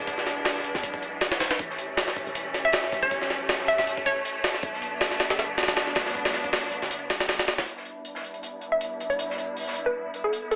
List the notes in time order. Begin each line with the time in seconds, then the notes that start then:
Already playing: F#1 E3 G#3 B3 D4
0.07 kick, closed hi-hat
0.18 snare
0.26 snare, closed hi-hat
0.45 snare, closed hi-hat, open hi-hat
0.56 snare
0.64 closed hi-hat
0.75 E2, snare
0.83 B1, closed hi-hat
0.94 kick
1.02 closed hi-hat
1.21 snare, closed hi-hat
1.32 snare, closed hi-hat
1.40 D1, snare, closed hi-hat
1.51 snare, closed hi-hat
1.59 A1 G3 A3 C#4, kick, closed hi-hat
1.70 snare
1.78 closed hi-hat
1.97 snare, closed hi-hat
2.08 snare
2.16 kick, closed hi-hat
2.26 E1, closed hi-hat
2.35 closed hi-hat
2.54 snare, closed hi-hat
2.65 E5, closed hi-hat
2.73 snare, closed hi-hat
2.84 snare
2.92 B1, closed hi-hat
3.03 C#5, kick, closed hi-hat
3.11 kick, closed hi-hat
3.22 snare
3.30 snare, closed hi-hat
3.49 snare, closed hi-hat, open hi-hat
3.60 snare
3.68 E5, closed hi-hat
3.78 E1 E5, snare
3.87 closed hi-hat
3.97 kick
4.06 C#5, kick, closed hi-hat
4.25 closed hi-hat
4.44 snare, closed hi-hat
4.54 snare
4.63 B1 F#3 B3 D4, kick, closed hi-hat
4.74 snare
4.82 closed hi-hat
5.01 snare, closed hi-hat
5.11 snare
5.20 snare, closed hi-hat
5.30 F#1, snare, closed hi-hat
5.39 snare, closed hi-hat
5.58 snare, closed hi-hat
5.63 snare, closed hi-hat
5.68 snare, closed hi-hat
5.77 snare, closed hi-hat
5.87 snare
5.95 C#2, snare, closed hi-hat
6.06 snare, closed hi-hat
6.15 kick, closed hi-hat
6.25 snare, closed hi-hat, open hi-hat
6.34 snare
6.44 kick, closed hi-hat
6.53 snare, closed hi-hat, open hi-hat
6.63 snare
6.72 closed hi-hat
6.82 F#1, snare
6.91 closed hi-hat
7.10 B1, snare, closed hi-hat
7.20 snare, closed hi-hat
7.29 snare, closed hi-hat, open hi-hat
7.39 snare, closed hi-hat
7.48 snare, closed hi-hat
7.58 D2, snare, closed hi-hat
7.67 G3 B3 D4 E4, closed hi-hat
7.77 snare
7.85 closed hi-hat
8.05 closed hi-hat
8.15 snare
8.24 closed hi-hat
8.34 closed hi-hat
8.43 closed hi-hat
8.61 closed hi-hat
8.72 E5
8.81 closed hi-hat
9.00 closed hi-hat
9.10 D5, closed hi-hat
9.19 closed hi-hat
9.30 snare
9.38 closed hi-hat
9.57 open hi-hat
9.67 snare
9.75 closed hi-hat
9.86 B4
10.14 closed hi-hat
10.24 A4
10.33 closed hi-hat
10.51 A4, closed hi-hat